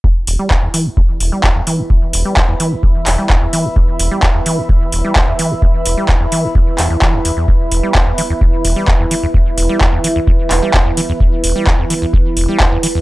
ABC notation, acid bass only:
X:1
M:4/4
L:1/16
Q:1/4=129
K:Em
V:1 name="Acid bass" clef=bass
E,, z E,,, G, D,, E,, E, E,, E,, z E,,, G, D,, E,, E, E,, | E,, z E,,, G, D,, E,, E, E,, E,, z E,,, G, D,, E,, E, E,, | E,, z E,,, G, D,, E,, E, E,, E,, z E,,, G, D,, E,, E, E,, | E,, z E,,, G, D,, E,, E, E,, E,, z E,, E,, E, D,, E,, E,, |
z2 E,,, G, D,, E,, E, E,, E,, z E,,, G, D,, E,, E, E,, | E,, z E,,, G, D,, E,, E, E,, E,, z E,,, G, D,, E,, E, E,, | E,, z E,,, G, D,, E,, E, E,, E,, z E,,, G, D,, E,, E, E,, |]